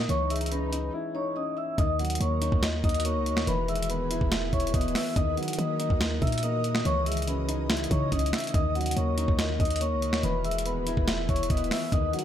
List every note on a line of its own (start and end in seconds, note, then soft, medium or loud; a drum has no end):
0.00 0.11 D#3 loud
0.00 0.11 F#3 medium
0.00 0.12 A#3 medium
0.00 0.11 D#4 medium
0.00 0.11 D#5 loud
0.00 swell medium
0.09 0.90 C#2 loud
0.09 1.15 E3 loud
0.09 0.26 C#5 loud
0.09 0.27 C#6 medium
0.09 closed hi-hat medium
0.30 1.36 G#3 medium
0.30 0.47 E5 medium
0.30 0.48 E6 medium
0.30 closed hi-hat medium
0.36 closed hi-hat medium
0.41 closed hi-hat medium
0.46 closed hi-hat medium
0.51 1.34 C#4 medium
0.51 0.91 B4 medium
0.51 0.91 B5 medium
0.51 closed hi-hat medium
0.73 1.13 D#4 medium
0.73 closed hi-hat medium
0.94 1.78 E4 loud
1.15 1.78 D#4 medium
1.15 1.32 C#5 medium
1.15 1.32 C#6 medium
1.36 1.78 C#4 medium
1.36 1.53 D#5 medium
1.36 1.53 D#6 medium
1.57 1.74 E5 medium
1.57 1.74 E6 medium
1.78 2.19 D#2 loud
1.78 2.84 D#3 loud
1.78 3.46 D#3 medium
1.78 3.46 D#4 medium
1.78 3.46 F#4 medium
1.78 3.46 A#4 medium
1.78 1.95 D#5 loud
1.78 1.96 D#6 medium
1.78 kick loud
1.78 closed hi-hat medium
1.99 3.05 F#3 medium
1.99 2.17 F#4 medium
1.99 2.16 F#5 medium
1.99 closed hi-hat medium
2.05 closed hi-hat medium
2.10 closed hi-hat medium
2.15 closed hi-hat medium
2.20 2.51 D#2 loud
2.20 3.04 A#3 medium
2.20 2.60 C#5 medium
2.20 2.61 C#6 medium
2.20 closed hi-hat medium
2.41 2.82 D#4 medium
2.41 closed hi-hat medium
2.52 2.83 D#2 loud
2.52 kick medium
2.63 3.47 D#5 loud
2.63 finger snap medium
2.63 snare loud
2.63 closed hi-hat medium
2.84 3.17 D#2 loud
2.84 3.47 D#4 medium
2.84 3.01 D#5 medium
2.84 3.01 D#6 medium
2.84 kick medium
2.84 closed hi-hat soft
2.89 closed hi-hat medium
2.94 closed hi-hat medium
3.00 closed hi-hat medium
3.04 3.47 A#3 medium
3.04 3.44 C#5 medium
3.04 3.45 C#6 medium
3.04 closed hi-hat medium
3.15 3.33 C#2 loud
3.26 closed hi-hat medium
3.31 3.46 D#2 loud
3.37 finger snap medium
3.37 snare loud
3.47 4.01 E1 loud
3.47 5.14 E3 medium
3.47 4.53 E3 loud
3.47 5.14 E4 medium
3.47 5.14 G#4 medium
3.47 5.14 B4 medium
3.47 3.64 B4 loud
3.47 3.65 B5 medium
3.47 closed hi-hat medium
3.68 4.74 G#3 medium
3.68 3.85 E5 medium
3.68 3.86 E6 medium
3.68 closed hi-hat medium
3.75 closed hi-hat medium
3.82 closed hi-hat medium
3.89 4.72 B3 medium
3.89 4.29 B4 medium
3.89 4.30 B5 medium
3.89 closed hi-hat medium
4.00 4.20 D#1 loud
4.10 4.51 E4 medium
4.10 closed hi-hat medium
4.21 4.52 E1 loud
4.21 kick medium
4.32 5.16 E5 loud
4.32 finger snap medium
4.32 snare loud
4.32 closed hi-hat medium
4.53 4.73 E1 loud
4.53 5.16 E4 medium
4.53 4.70 C#5 medium
4.53 4.70 C#6 medium
4.53 kick medium
4.53 closed hi-hat soft
4.60 closed hi-hat medium
4.67 closed hi-hat medium
4.74 4.94 E1 loud
4.74 5.16 B3 medium
4.74 4.91 D#5 medium
4.74 4.92 D#6 medium
4.74 kick loud
4.74 closed hi-hat medium
4.81 closed hi-hat medium
4.88 closed hi-hat medium
4.95 5.12 E5 medium
4.95 5.13 E6 medium
4.95 finger snap medium
4.95 snare loud
4.95 open hi-hat medium
5.16 5.36 D#2 loud
5.16 6.22 D#3 loud
5.16 6.84 D#3 medium
5.16 6.84 F#4 medium
5.16 6.84 A#4 medium
5.16 10.19 D#5 medium
5.16 5.33 D#5 loud
5.16 5.34 D#6 medium
5.16 kick loud
5.16 closed hi-hat medium
5.37 6.43 F#3 medium
5.37 5.55 F#4 medium
5.37 5.55 F#5 medium
5.37 closed hi-hat medium
5.43 closed hi-hat medium
5.48 closed hi-hat medium
5.53 closed hi-hat medium
5.58 5.89 D#3 loud
5.58 6.42 A#3 medium
5.58 5.98 D#5 medium
5.58 5.99 D#6 medium
5.58 closed hi-hat medium
5.80 6.20 D#4 medium
5.80 closed hi-hat medium
5.90 6.21 D#2 loud
5.90 kick medium
6.01 6.85 D#5 loud
6.01 finger snap medium
6.01 snare loud
6.01 closed hi-hat medium
6.22 6.83 A#2 loud
6.22 6.85 D#4 medium
6.22 6.39 E5 medium
6.22 6.39 E6 medium
6.22 kick medium
6.22 closed hi-hat soft
6.27 closed hi-hat medium
6.32 closed hi-hat medium
6.38 closed hi-hat medium
6.43 6.85 A#3 medium
6.43 6.83 D#5 medium
6.43 6.83 D#6 medium
6.43 closed hi-hat medium
6.64 closed hi-hat medium
6.75 finger snap medium
6.75 snare loud
6.85 7.87 C#2 loud
6.85 8.53 C#3 medium
6.85 8.53 E3 medium
6.85 7.91 E3 loud
6.85 8.53 C#4 medium
6.85 7.02 C#5 loud
6.85 7.03 C#6 medium
6.85 closed hi-hat medium
7.06 8.12 G#3 medium
7.06 7.23 E5 medium
7.06 7.24 E6 medium
7.06 closed hi-hat medium
7.12 closed hi-hat medium
7.17 closed hi-hat medium
7.22 closed hi-hat medium
7.27 8.10 C#4 medium
7.27 7.67 B4 medium
7.27 7.68 B5 medium
7.27 closed hi-hat medium
7.49 7.89 D#4 medium
7.49 closed hi-hat medium
7.70 8.54 E4 loud
7.70 finger snap medium
7.70 snare loud
7.70 closed hi-hat soft
7.77 closed hi-hat medium
7.84 closed hi-hat medium
7.91 8.11 C#3 loud
7.91 8.54 D#4 medium
7.91 8.08 C#5 medium
7.91 8.08 C#6 medium
7.91 kick medium
7.91 closed hi-hat medium
8.12 8.32 C#2 loud
8.12 8.54 C#4 medium
8.12 8.29 D#5 medium
8.12 8.30 D#6 medium
8.12 kick loud
8.12 closed hi-hat medium
8.19 closed hi-hat medium
8.26 closed hi-hat medium
8.33 8.50 E5 medium
8.33 finger snap medium
8.33 snare loud
8.33 closed hi-hat medium
8.38 closed hi-hat medium
8.40 closed hi-hat medium
8.44 closed hi-hat medium
8.47 closed hi-hat medium
8.49 closed hi-hat soft
8.54 8.95 D#2 loud
8.54 9.60 D#3 loud
8.54 10.22 D#3 medium
8.54 10.22 F#4 medium
8.54 10.22 A#4 medium
8.54 8.71 D#5 loud
8.54 8.72 D#6 medium
8.54 kick loud
8.54 closed hi-hat medium
8.75 9.81 F#3 medium
8.75 8.93 F#4 medium
8.75 8.92 F#5 medium
8.75 closed hi-hat medium
8.81 closed hi-hat medium
8.86 closed hi-hat medium
8.91 closed hi-hat medium
8.96 9.27 D#2 loud
8.96 9.80 A#3 medium
8.96 9.36 C#5 medium
8.96 9.37 C#6 medium
8.96 closed hi-hat medium
9.18 9.58 D#4 medium
9.18 closed hi-hat medium
9.28 9.59 D#2 loud
9.28 kick loud
9.39 10.23 D#5 loud
9.39 finger snap medium
9.39 snare loud
9.39 closed hi-hat medium
9.60 9.93 D#2 loud
9.60 10.23 D#4 medium
9.60 9.77 D#5 medium
9.60 9.77 D#6 medium
9.60 kick medium
9.60 closed hi-hat soft
9.65 closed hi-hat medium
9.70 closed hi-hat medium
9.76 closed hi-hat medium
9.81 10.23 A#3 medium
9.81 10.21 C#5 medium
9.81 10.21 C#6 medium
9.81 closed hi-hat medium
9.92 10.09 C#2 loud
10.02 closed hi-hat medium
10.08 10.23 D#2 loud
10.13 finger snap medium
10.13 snare loud
10.23 10.78 E1 loud
10.23 11.91 E3 medium
10.23 11.29 E3 loud
10.23 11.91 E4 medium
10.23 11.91 G#4 medium
10.23 11.91 B4 medium
10.23 10.40 B4 loud
10.23 10.41 B5 medium
10.23 closed hi-hat medium
10.44 11.50 G#3 medium
10.44 10.62 E5 medium
10.44 10.62 E6 medium
10.44 closed hi-hat medium
10.51 closed hi-hat medium
10.58 closed hi-hat medium
10.65 11.48 B3 medium
10.65 11.05 B4 medium
10.65 11.06 B5 medium
10.65 closed hi-hat medium
10.76 10.96 D#1 loud
10.87 11.27 E4 medium
10.87 closed hi-hat medium
10.97 11.28 E1 loud
10.97 kick medium
11.08 11.92 E5 loud
11.08 finger snap medium
11.08 snare loud
11.08 closed hi-hat medium
11.29 11.49 E1 loud
11.29 11.92 E4 medium
11.29 11.46 C#5 medium
11.29 11.46 C#6 medium
11.29 kick medium
11.29 closed hi-hat soft
11.36 closed hi-hat medium
11.43 closed hi-hat medium
11.50 11.70 E1 loud
11.50 11.92 B3 medium
11.50 11.67 D#5 medium
11.50 11.68 D#6 medium
11.50 kick loud
11.50 closed hi-hat medium
11.57 closed hi-hat medium
11.64 closed hi-hat medium
11.71 11.88 E5 medium
11.71 11.89 E6 medium
11.71 finger snap medium
11.71 snare loud
11.71 open hi-hat medium
11.92 12.13 D#2 loud
11.92 12.24 D#3 loud
11.92 12.24 D#3 medium
11.92 12.24 F#4 medium
11.92 12.24 A#4 medium
11.92 12.24 D#5 medium
11.92 12.09 D#5 loud
11.92 12.10 D#6 medium
11.92 kick loud
11.92 closed hi-hat medium
12.13 12.24 F#3 medium
12.13 12.24 F#4 medium
12.13 12.24 F#5 medium
12.13 closed hi-hat medium
12.19 closed hi-hat medium